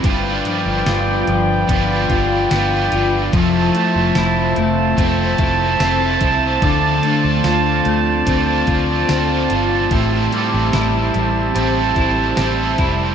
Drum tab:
HH |xxxxxxxx|xxxxxxxx|xxxxxxxx|xxxxxxxx|
TB |--x---x-|--x---x-|--x---x-|--x---x-|
SD |--o---o-|--o---o-|--o---o-|--o---o-|
BD |o---oo--|o---oo-o|o---oo--|o----o-o|